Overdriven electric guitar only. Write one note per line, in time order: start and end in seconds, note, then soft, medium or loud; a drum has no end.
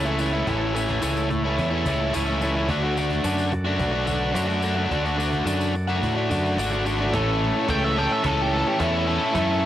0.00 0.32 A2 medium
0.00 0.17 E3 medium
0.05 0.19 A3 medium
0.05 0.19 C#4 medium
0.05 0.19 E4 medium
0.18 0.45 E3 medium
0.18 0.34 A3 medium
0.18 0.32 C#4 medium
0.18 0.31 E4 medium
0.32 0.47 A3 medium
0.32 0.47 C#4 medium
0.32 0.48 E4 medium
0.46 0.88 A2 medium
0.46 0.72 E3 medium
0.46 0.62 A3 medium
0.46 0.60 C#4 medium
0.46 0.59 E4 loud
0.60 0.74 A3 medium
0.60 0.74 C#4 medium
0.60 0.75 E4 medium
0.73 1.00 E3 medium
0.73 1.02 A3 medium
0.73 1.02 C#4 medium
0.73 1.03 E4 medium
1.01 1.57 A2 medium
1.01 1.28 E3 medium
1.01 1.30 A3 loud
1.01 1.29 C#4 loud
1.01 1.29 E4 loud
1.29 muted overdriven electric guitar stroke soft
1.44 1.73 A3 medium
1.44 1.71 C#4 medium
1.44 1.69 E4 medium
1.70 1.86 A3 medium
1.70 1.86 C#4 medium
1.70 1.86 E4 medium
1.85 2.12 E3 medium
1.85 2.13 A3 medium
1.85 2.14 C#4 medium
1.85 2.14 E4 medium
2.12 2.55 A2 loud
2.12 2.40 E3 medium
2.12 2.29 A3 medium
2.12 2.27 C#4 medium
2.12 2.25 E4 loud
2.26 2.41 A3 medium
2.26 2.42 C#4 medium
2.26 2.43 E4 medium
2.41 2.67 E3 medium
2.41 2.58 A3 medium
2.41 2.55 C#4 medium
2.41 2.54 E4 medium
2.55 2.69 A3 medium
2.55 2.68 C#4 medium
2.55 2.67 E4 medium
2.69 2.96 D3 medium
2.69 2.84 A3 loud
2.69 2.83 D4 loud
2.69 2.82 F#4 loud
2.82 2.97 A3 medium
2.82 2.98 D4 medium
2.82 2.98 F#4 medium
2.96 3.23 D3 medium
2.96 3.24 A3 medium
2.96 3.25 D4 medium
2.96 3.26 F#4 medium
3.24 3.51 D3 loud
3.24 3.52 A3 loud
3.24 3.52 D4 medium
3.24 3.53 F#4 loud
3.52 muted overdriven electric guitar stroke soft
3.65 3.94 A3 medium
3.65 3.92 D4 medium
3.65 3.91 F#4 medium
3.92 4.06 A3 medium
3.92 4.06 D4 medium
3.92 4.06 F#4 medium
4.05 4.32 D3 medium
4.05 4.34 A3 medium
4.05 4.34 D4 medium
4.05 4.34 F#4 medium
4.33 4.62 D3 medium
4.33 4.50 A3 medium
4.33 4.48 D4 medium
4.33 4.47 F#4 loud
4.48 4.63 A3 medium
4.48 4.63 D4 medium
4.48 4.64 F#4 medium
4.63 4.89 D3 medium
4.63 4.78 A3 medium
4.63 4.76 D4 medium
4.63 4.75 F#4 medium
4.76 4.90 A3 medium
4.76 4.90 D4 medium
4.76 4.91 F#4 medium
4.90 5.16 D3 medium
4.90 5.05 A3 medium
4.90 5.04 D4 medium
4.90 5.02 F#4 medium
5.03 5.16 A3 medium
5.03 5.18 D4 medium
5.03 5.19 F#4 medium
5.17 5.43 D3 medium
5.17 5.45 A3 medium
5.17 5.45 D4 medium
5.17 5.46 F#4 medium
5.45 5.73 D3 loud
5.45 5.73 A3 medium
5.45 5.73 D4 medium
5.45 5.74 F#4 loud
5.74 muted overdriven electric guitar stroke soft
5.88 6.17 A3 medium
5.88 6.15 D4 medium
5.88 6.14 F#4 medium
6.15 6.29 A3 medium
6.15 6.30 D4 medium
6.15 6.31 F#4 medium
6.29 6.57 D3 medium
6.29 6.57 A3 medium
6.29 6.58 D4 medium
6.29 6.59 F#4 medium
6.58 6.84 D3 medium
6.58 6.73 A3 medium
6.58 6.72 D4 loud
6.58 6.70 F#4 loud
6.71 6.85 A3 medium
6.71 6.86 D4 medium
6.71 6.87 F#4 medium
6.85 7.12 D3 medium
6.85 7.01 A3 medium
6.85 6.99 D4 medium
6.85 6.98 F#4 medium
6.99 7.13 A3 medium
6.99 7.12 D4 medium
6.99 7.12 F#4 medium
7.14 7.68 A2 loud
7.14 7.68 E3 loud
7.14 7.68 A3 loud
7.14 7.69 C#4 loud
7.14 7.70 A4 loud
7.68 7.95 A2 medium
7.68 7.96 E3 medium
7.68 7.97 A3 medium
7.68 7.97 C#4 medium
7.68 7.97 A4 medium
7.96 8.21 A2 medium
7.96 8.22 E3 medium
7.96 8.22 A3 medium
7.96 8.23 C#4 medium
7.96 8.23 A4 medium
8.23 8.77 A2 medium
8.23 8.77 E3 loud
8.23 8.78 A3 medium
8.23 8.79 C#4 loud
8.23 8.79 A4 loud
8.78 9.04 A2 medium
8.78 9.06 E3 medium
8.78 9.06 A3 medium
8.78 9.06 C#4 medium
8.78 9.07 A4 medium
9.06 9.32 A2 medium
9.06 9.32 E3 medium
9.06 9.33 A3 medium
9.06 9.33 C#4 medium
9.06 9.34 A4 loud
9.33 9.65 A2 medium
9.33 9.65 E3 medium
9.33 9.65 A3 loud
9.33 9.65 C#4 loud
9.33 9.65 A4 loud